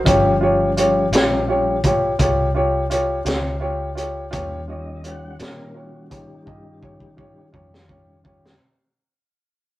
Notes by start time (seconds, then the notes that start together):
0.04 G1 F3 G3 C#4 F4 G4 C#5, kick, closed hi-hat
0.41 F4 G4 C#5
0.77 F4 G4 C#5, closed hi-hat
1.12 A#1 F4 G4 C#5, snare, closed hi-hat
1.48 F3 G3 C#4 F4 G4 C#5
1.84 F4 G4 C#5, kick, closed hi-hat
2.19 C2 F4 G4 C#5, kick, closed hi-hat
2.55 F4 G4 C#5
2.90 F4 G4 C#5, closed hi-hat
3.25 C#2 F4 G4 C#5, snare, closed hi-hat
3.60 F4 G4 C#5
3.95 F4 G4 C#5, closed hi-hat
4.31 D#2 D#3 G3 C#4 F4 G4 C#5, kick, closed hi-hat
4.68 F4 G4 C#5 D#5
5.04 F4 G4 C#5 F#5, closed hi-hat
5.39 A#2 F4 G4 C#5, snare, closed hi-hat
5.45 A#4
5.74 F4 F#4 G4 C#5
6.10 D#4 F4 G4 C#5, kick, closed hi-hat
6.46 G2 F4 G4 D#5, kick
6.82 F4 G4 C#5, kick
7.00 kick
7.17 F4 G4 C#5, kick
7.52 F2 F4 G4 C#5, kick
7.74 snare
7.88 F4 G4 C#5, kick
8.24 F4 G4 C#5, kick
8.46 snare